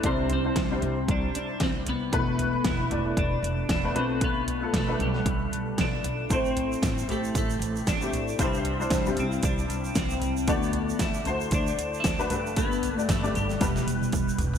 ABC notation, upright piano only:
X:1
M:4/4
L:1/16
Q:"Swing 16ths" 1/4=115
K:C
V:1 name="Upright piano"
[G,DEc]2 z [G,DEc] z [G,DEc]6 z4 z | [A,B,EB]4 z2 [A,B,Ed]4- [A,B,Ed] z2 [A,B,EB] [A,DFB]2- | [A,DFB]2 z [A,DFA] z [A,DFB]6 z4 z | [A,CEc]4 z2 [A,CEG]4- [A,CEG] z2 [A,CEG]2 z |
[G,DEc]2 z [G,DEc] z [G,DEG]6 z4 z | [A,D^Fd]4 z2 [A,DFc]4- [A,DFc] z2 [A,DFB] [A,DGB]2- | [A,DGB]2 z [A,DGd] z [A,DGd]3 [G,B,EB]6 z2 |]
V:2 name="Upright piano" clef=bass
C,6 z8 z2 | B,,6 z8 B,,2- | B,,4 z12 | z16 |
G,,6 z8 z2 | A,,6 z8 [G,,D,]2- | [G,,D,]4 z4 B,,6 z2 |]